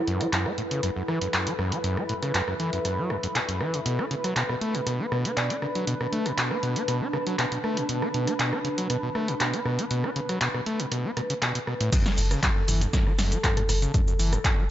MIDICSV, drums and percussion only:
0, 0, Header, 1, 2, 480
1, 0, Start_track
1, 0, Key_signature, 3, "minor"
1, 0, Tempo, 504202
1, 1752, Time_signature, 4, 2, 24, 8
1, 13997, End_track
2, 0, Start_track
2, 0, Title_t, "Drums"
2, 71, Note_on_c, 9, 42, 34
2, 167, Note_off_c, 9, 42, 0
2, 197, Note_on_c, 9, 37, 40
2, 197, Note_on_c, 9, 42, 53
2, 293, Note_off_c, 9, 37, 0
2, 293, Note_off_c, 9, 42, 0
2, 312, Note_on_c, 9, 42, 64
2, 315, Note_on_c, 9, 39, 118
2, 407, Note_off_c, 9, 42, 0
2, 410, Note_off_c, 9, 39, 0
2, 437, Note_on_c, 9, 37, 59
2, 533, Note_off_c, 9, 37, 0
2, 552, Note_on_c, 9, 42, 35
2, 647, Note_off_c, 9, 42, 0
2, 678, Note_on_c, 9, 42, 49
2, 773, Note_off_c, 9, 42, 0
2, 791, Note_on_c, 9, 37, 39
2, 791, Note_on_c, 9, 42, 62
2, 887, Note_off_c, 9, 37, 0
2, 887, Note_off_c, 9, 42, 0
2, 1031, Note_on_c, 9, 37, 60
2, 1127, Note_off_c, 9, 37, 0
2, 1157, Note_on_c, 9, 42, 50
2, 1252, Note_off_c, 9, 42, 0
2, 1271, Note_on_c, 9, 37, 37
2, 1271, Note_on_c, 9, 42, 62
2, 1274, Note_on_c, 9, 39, 113
2, 1366, Note_off_c, 9, 37, 0
2, 1366, Note_off_c, 9, 42, 0
2, 1369, Note_off_c, 9, 39, 0
2, 1397, Note_on_c, 9, 42, 58
2, 1492, Note_off_c, 9, 42, 0
2, 1512, Note_on_c, 9, 37, 59
2, 1607, Note_off_c, 9, 37, 0
2, 1638, Note_on_c, 9, 42, 49
2, 1733, Note_off_c, 9, 42, 0
2, 1752, Note_on_c, 9, 42, 64
2, 1847, Note_off_c, 9, 42, 0
2, 1878, Note_on_c, 9, 37, 59
2, 1973, Note_off_c, 9, 37, 0
2, 1992, Note_on_c, 9, 42, 33
2, 2087, Note_off_c, 9, 42, 0
2, 2119, Note_on_c, 9, 37, 41
2, 2119, Note_on_c, 9, 42, 50
2, 2214, Note_off_c, 9, 37, 0
2, 2214, Note_off_c, 9, 42, 0
2, 2232, Note_on_c, 9, 42, 63
2, 2236, Note_on_c, 9, 39, 113
2, 2328, Note_off_c, 9, 42, 0
2, 2331, Note_off_c, 9, 39, 0
2, 2359, Note_on_c, 9, 37, 61
2, 2454, Note_off_c, 9, 37, 0
2, 2473, Note_on_c, 9, 42, 35
2, 2568, Note_off_c, 9, 42, 0
2, 2599, Note_on_c, 9, 42, 49
2, 2694, Note_off_c, 9, 42, 0
2, 2713, Note_on_c, 9, 37, 40
2, 2713, Note_on_c, 9, 42, 59
2, 2808, Note_off_c, 9, 37, 0
2, 2808, Note_off_c, 9, 42, 0
2, 2953, Note_on_c, 9, 37, 58
2, 3048, Note_off_c, 9, 37, 0
2, 3079, Note_on_c, 9, 42, 49
2, 3174, Note_off_c, 9, 42, 0
2, 3193, Note_on_c, 9, 37, 41
2, 3193, Note_on_c, 9, 42, 60
2, 3196, Note_on_c, 9, 39, 112
2, 3288, Note_off_c, 9, 37, 0
2, 3288, Note_off_c, 9, 42, 0
2, 3291, Note_off_c, 9, 39, 0
2, 3319, Note_on_c, 9, 42, 56
2, 3414, Note_off_c, 9, 42, 0
2, 3433, Note_on_c, 9, 37, 62
2, 3528, Note_off_c, 9, 37, 0
2, 3559, Note_on_c, 9, 42, 48
2, 3654, Note_off_c, 9, 42, 0
2, 3673, Note_on_c, 9, 42, 63
2, 3768, Note_off_c, 9, 42, 0
2, 3799, Note_on_c, 9, 37, 61
2, 3894, Note_off_c, 9, 37, 0
2, 3913, Note_on_c, 9, 42, 33
2, 4008, Note_off_c, 9, 42, 0
2, 4039, Note_on_c, 9, 37, 41
2, 4039, Note_on_c, 9, 42, 52
2, 4134, Note_off_c, 9, 37, 0
2, 4134, Note_off_c, 9, 42, 0
2, 4153, Note_on_c, 9, 42, 62
2, 4156, Note_on_c, 9, 39, 109
2, 4248, Note_off_c, 9, 42, 0
2, 4251, Note_off_c, 9, 39, 0
2, 4278, Note_on_c, 9, 37, 60
2, 4374, Note_off_c, 9, 37, 0
2, 4393, Note_on_c, 9, 42, 35
2, 4488, Note_off_c, 9, 42, 0
2, 4519, Note_on_c, 9, 42, 50
2, 4614, Note_off_c, 9, 42, 0
2, 4633, Note_on_c, 9, 37, 40
2, 4633, Note_on_c, 9, 42, 61
2, 4728, Note_off_c, 9, 37, 0
2, 4728, Note_off_c, 9, 42, 0
2, 4873, Note_on_c, 9, 37, 60
2, 4968, Note_off_c, 9, 37, 0
2, 4999, Note_on_c, 9, 42, 51
2, 5094, Note_off_c, 9, 42, 0
2, 5113, Note_on_c, 9, 37, 39
2, 5113, Note_on_c, 9, 42, 61
2, 5116, Note_on_c, 9, 39, 109
2, 5208, Note_off_c, 9, 37, 0
2, 5208, Note_off_c, 9, 42, 0
2, 5211, Note_off_c, 9, 39, 0
2, 5238, Note_on_c, 9, 42, 56
2, 5334, Note_off_c, 9, 42, 0
2, 5352, Note_on_c, 9, 37, 61
2, 5447, Note_off_c, 9, 37, 0
2, 5478, Note_on_c, 9, 42, 48
2, 5573, Note_off_c, 9, 42, 0
2, 5592, Note_on_c, 9, 42, 67
2, 5687, Note_off_c, 9, 42, 0
2, 5718, Note_on_c, 9, 37, 61
2, 5813, Note_off_c, 9, 37, 0
2, 5832, Note_on_c, 9, 42, 35
2, 5927, Note_off_c, 9, 42, 0
2, 5958, Note_on_c, 9, 37, 40
2, 5958, Note_on_c, 9, 42, 53
2, 6053, Note_off_c, 9, 37, 0
2, 6053, Note_off_c, 9, 42, 0
2, 6073, Note_on_c, 9, 42, 64
2, 6076, Note_on_c, 9, 39, 111
2, 6168, Note_off_c, 9, 42, 0
2, 6171, Note_off_c, 9, 39, 0
2, 6198, Note_on_c, 9, 37, 59
2, 6293, Note_off_c, 9, 37, 0
2, 6312, Note_on_c, 9, 42, 37
2, 6407, Note_off_c, 9, 42, 0
2, 6437, Note_on_c, 9, 42, 52
2, 6532, Note_off_c, 9, 42, 0
2, 6551, Note_on_c, 9, 37, 37
2, 6551, Note_on_c, 9, 42, 62
2, 6646, Note_off_c, 9, 37, 0
2, 6646, Note_off_c, 9, 42, 0
2, 6791, Note_on_c, 9, 37, 59
2, 6887, Note_off_c, 9, 37, 0
2, 6918, Note_on_c, 9, 42, 51
2, 7013, Note_off_c, 9, 42, 0
2, 7032, Note_on_c, 9, 37, 39
2, 7032, Note_on_c, 9, 42, 62
2, 7035, Note_on_c, 9, 39, 112
2, 7127, Note_off_c, 9, 37, 0
2, 7127, Note_off_c, 9, 42, 0
2, 7130, Note_off_c, 9, 39, 0
2, 7158, Note_on_c, 9, 42, 59
2, 7253, Note_off_c, 9, 42, 0
2, 7272, Note_on_c, 9, 37, 59
2, 7367, Note_off_c, 9, 37, 0
2, 7398, Note_on_c, 9, 42, 49
2, 7493, Note_off_c, 9, 42, 0
2, 7512, Note_on_c, 9, 42, 68
2, 7607, Note_off_c, 9, 42, 0
2, 7638, Note_on_c, 9, 37, 56
2, 7733, Note_off_c, 9, 37, 0
2, 7752, Note_on_c, 9, 42, 37
2, 7847, Note_off_c, 9, 42, 0
2, 7878, Note_on_c, 9, 37, 38
2, 7878, Note_on_c, 9, 42, 54
2, 7973, Note_off_c, 9, 37, 0
2, 7973, Note_off_c, 9, 42, 0
2, 7992, Note_on_c, 9, 42, 66
2, 7995, Note_on_c, 9, 39, 113
2, 8087, Note_off_c, 9, 42, 0
2, 8090, Note_off_c, 9, 39, 0
2, 8117, Note_on_c, 9, 37, 56
2, 8213, Note_off_c, 9, 37, 0
2, 8232, Note_on_c, 9, 42, 38
2, 8327, Note_off_c, 9, 42, 0
2, 8358, Note_on_c, 9, 42, 54
2, 8453, Note_off_c, 9, 42, 0
2, 8472, Note_on_c, 9, 37, 36
2, 8472, Note_on_c, 9, 42, 66
2, 8567, Note_off_c, 9, 37, 0
2, 8567, Note_off_c, 9, 42, 0
2, 8712, Note_on_c, 9, 37, 55
2, 8807, Note_off_c, 9, 37, 0
2, 8838, Note_on_c, 9, 42, 54
2, 8933, Note_off_c, 9, 42, 0
2, 8952, Note_on_c, 9, 37, 37
2, 8952, Note_on_c, 9, 42, 65
2, 8955, Note_on_c, 9, 39, 111
2, 9047, Note_off_c, 9, 37, 0
2, 9047, Note_off_c, 9, 42, 0
2, 9050, Note_off_c, 9, 39, 0
2, 9078, Note_on_c, 9, 42, 60
2, 9173, Note_off_c, 9, 42, 0
2, 9192, Note_on_c, 9, 37, 56
2, 9287, Note_off_c, 9, 37, 0
2, 9318, Note_on_c, 9, 42, 53
2, 9413, Note_off_c, 9, 42, 0
2, 9432, Note_on_c, 9, 42, 70
2, 9527, Note_off_c, 9, 42, 0
2, 9558, Note_on_c, 9, 37, 55
2, 9653, Note_off_c, 9, 37, 0
2, 9672, Note_on_c, 9, 42, 38
2, 9767, Note_off_c, 9, 42, 0
2, 9798, Note_on_c, 9, 37, 38
2, 9798, Note_on_c, 9, 42, 55
2, 9893, Note_off_c, 9, 37, 0
2, 9893, Note_off_c, 9, 42, 0
2, 9911, Note_on_c, 9, 42, 69
2, 9915, Note_on_c, 9, 39, 117
2, 10007, Note_off_c, 9, 42, 0
2, 10010, Note_off_c, 9, 39, 0
2, 10038, Note_on_c, 9, 37, 55
2, 10133, Note_off_c, 9, 37, 0
2, 10152, Note_on_c, 9, 42, 39
2, 10247, Note_off_c, 9, 42, 0
2, 10278, Note_on_c, 9, 42, 54
2, 10374, Note_off_c, 9, 42, 0
2, 10392, Note_on_c, 9, 37, 36
2, 10392, Note_on_c, 9, 42, 68
2, 10488, Note_off_c, 9, 37, 0
2, 10488, Note_off_c, 9, 42, 0
2, 10632, Note_on_c, 9, 37, 56
2, 10632, Note_on_c, 9, 42, 39
2, 10728, Note_off_c, 9, 37, 0
2, 10728, Note_off_c, 9, 42, 0
2, 10758, Note_on_c, 9, 42, 56
2, 10853, Note_off_c, 9, 42, 0
2, 10872, Note_on_c, 9, 37, 37
2, 10872, Note_on_c, 9, 42, 66
2, 10875, Note_on_c, 9, 39, 114
2, 10968, Note_off_c, 9, 37, 0
2, 10968, Note_off_c, 9, 42, 0
2, 10971, Note_off_c, 9, 39, 0
2, 10998, Note_on_c, 9, 42, 61
2, 11094, Note_off_c, 9, 42, 0
2, 11113, Note_on_c, 9, 37, 55
2, 11208, Note_off_c, 9, 37, 0
2, 11239, Note_on_c, 9, 42, 54
2, 11334, Note_off_c, 9, 42, 0
2, 11352, Note_on_c, 9, 36, 119
2, 11353, Note_on_c, 9, 42, 70
2, 11353, Note_on_c, 9, 49, 108
2, 11354, Note_on_c, 9, 69, 47
2, 11447, Note_off_c, 9, 36, 0
2, 11448, Note_off_c, 9, 42, 0
2, 11448, Note_off_c, 9, 49, 0
2, 11449, Note_off_c, 9, 69, 0
2, 11479, Note_on_c, 9, 38, 60
2, 11480, Note_on_c, 9, 69, 31
2, 11574, Note_off_c, 9, 38, 0
2, 11575, Note_off_c, 9, 69, 0
2, 11592, Note_on_c, 9, 46, 111
2, 11593, Note_on_c, 9, 69, 79
2, 11688, Note_off_c, 9, 46, 0
2, 11689, Note_off_c, 9, 69, 0
2, 11719, Note_on_c, 9, 37, 60
2, 11719, Note_on_c, 9, 42, 57
2, 11720, Note_on_c, 9, 69, 36
2, 11814, Note_off_c, 9, 37, 0
2, 11814, Note_off_c, 9, 42, 0
2, 11815, Note_off_c, 9, 69, 0
2, 11832, Note_on_c, 9, 36, 112
2, 11833, Note_on_c, 9, 42, 72
2, 11834, Note_on_c, 9, 69, 45
2, 11836, Note_on_c, 9, 39, 127
2, 11928, Note_off_c, 9, 36, 0
2, 11928, Note_off_c, 9, 42, 0
2, 11929, Note_off_c, 9, 69, 0
2, 11931, Note_off_c, 9, 39, 0
2, 12072, Note_on_c, 9, 45, 88
2, 12072, Note_on_c, 9, 46, 115
2, 12074, Note_on_c, 9, 69, 81
2, 12168, Note_off_c, 9, 45, 0
2, 12168, Note_off_c, 9, 46, 0
2, 12169, Note_off_c, 9, 69, 0
2, 12199, Note_on_c, 9, 42, 57
2, 12200, Note_on_c, 9, 69, 35
2, 12295, Note_off_c, 9, 42, 0
2, 12295, Note_off_c, 9, 69, 0
2, 12312, Note_on_c, 9, 36, 122
2, 12313, Note_on_c, 9, 38, 57
2, 12313, Note_on_c, 9, 42, 68
2, 12314, Note_on_c, 9, 69, 46
2, 12408, Note_off_c, 9, 36, 0
2, 12409, Note_off_c, 9, 38, 0
2, 12409, Note_off_c, 9, 42, 0
2, 12410, Note_off_c, 9, 69, 0
2, 12439, Note_on_c, 9, 37, 38
2, 12534, Note_off_c, 9, 37, 0
2, 12553, Note_on_c, 9, 38, 61
2, 12553, Note_on_c, 9, 46, 107
2, 12554, Note_on_c, 9, 69, 78
2, 12648, Note_off_c, 9, 38, 0
2, 12648, Note_off_c, 9, 46, 0
2, 12649, Note_off_c, 9, 69, 0
2, 12679, Note_on_c, 9, 42, 55
2, 12680, Note_on_c, 9, 69, 35
2, 12774, Note_off_c, 9, 42, 0
2, 12775, Note_off_c, 9, 69, 0
2, 12792, Note_on_c, 9, 36, 105
2, 12793, Note_on_c, 9, 42, 69
2, 12794, Note_on_c, 9, 69, 43
2, 12796, Note_on_c, 9, 39, 127
2, 12888, Note_off_c, 9, 36, 0
2, 12888, Note_off_c, 9, 42, 0
2, 12889, Note_off_c, 9, 69, 0
2, 12891, Note_off_c, 9, 39, 0
2, 12919, Note_on_c, 9, 42, 65
2, 12919, Note_on_c, 9, 45, 83
2, 13014, Note_off_c, 9, 42, 0
2, 13014, Note_off_c, 9, 45, 0
2, 13033, Note_on_c, 9, 37, 58
2, 13033, Note_on_c, 9, 46, 107
2, 13034, Note_on_c, 9, 69, 79
2, 13128, Note_off_c, 9, 37, 0
2, 13128, Note_off_c, 9, 46, 0
2, 13129, Note_off_c, 9, 69, 0
2, 13160, Note_on_c, 9, 42, 55
2, 13161, Note_on_c, 9, 69, 34
2, 13255, Note_off_c, 9, 42, 0
2, 13256, Note_off_c, 9, 69, 0
2, 13272, Note_on_c, 9, 36, 125
2, 13273, Note_on_c, 9, 42, 71
2, 13273, Note_on_c, 9, 45, 90
2, 13274, Note_on_c, 9, 69, 44
2, 13368, Note_off_c, 9, 36, 0
2, 13369, Note_off_c, 9, 42, 0
2, 13369, Note_off_c, 9, 45, 0
2, 13370, Note_off_c, 9, 69, 0
2, 13400, Note_on_c, 9, 69, 30
2, 13496, Note_off_c, 9, 69, 0
2, 13513, Note_on_c, 9, 46, 108
2, 13514, Note_on_c, 9, 69, 75
2, 13608, Note_off_c, 9, 46, 0
2, 13609, Note_off_c, 9, 69, 0
2, 13639, Note_on_c, 9, 37, 61
2, 13639, Note_on_c, 9, 42, 54
2, 13640, Note_on_c, 9, 69, 34
2, 13734, Note_off_c, 9, 37, 0
2, 13734, Note_off_c, 9, 42, 0
2, 13735, Note_off_c, 9, 69, 0
2, 13752, Note_on_c, 9, 36, 112
2, 13753, Note_on_c, 9, 42, 70
2, 13754, Note_on_c, 9, 69, 44
2, 13756, Note_on_c, 9, 39, 127
2, 13848, Note_off_c, 9, 36, 0
2, 13848, Note_off_c, 9, 42, 0
2, 13849, Note_off_c, 9, 69, 0
2, 13851, Note_off_c, 9, 39, 0
2, 13997, End_track
0, 0, End_of_file